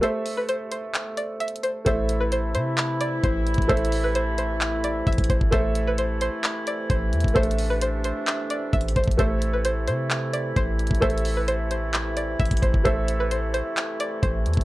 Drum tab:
HH |x-----------o-----------x-----------x-----------x-----------x-----------x---x---x---x-----------|x-----------x-----------x-----------x-----------x-----------x-----------x-----------x---x---x---|x---x---x---o-----------x-----------x-----------x-----------x-----------x--x--x--x--x-----------|x-----------x-----------x-----------x-----------x-----------x-----------x-----------x---x---x---|
CP |------------------------------------------------x-----------------------------------------------|------------------------------------------------x-----------------------------------------------|------------------------------------------------x-----------------------------------------------|------------------------------------------------x-----------------------------------------------|
BD |------------------------------------------------------------------------------------------------|o-----------------------------------------------------------------------o-----------------o-----|o-----------------------------------------------------------------------o-----o-----o-----o-----|o-----------------------------------------------------------------------o-----------------o-----|

HH |x---x---x---o-----------x-----------x-----------x-----------x-----------x---x---x---x---x---x---|x-----------x-----------x-----------x-----------x-----------x-----------x-----------x---x---x---|x---x---x---o-----------x-----------x-----------x-----------x-----------x--x--x--x--x-----------|x-----------x-----------x-----------x-----------x-----------x-----------x-----------x---x-------|
CP |------------------------------------------------x-----------------------------------------------|------------------------------------------------x-----------------------------------------------|------------------------------------------------x-----------------------------------------------|------------------------------------------------x-----------------------------------------------|
BD |o-----------------------------------------------------------------------o-----------o-----o-----|o-----------------------------------------------------------------------o-----------------o-----|o-----------------------------------------------------------------------o-----o-----o-----o-----|o-----------------------------------------------------------------------o-----------------o-----|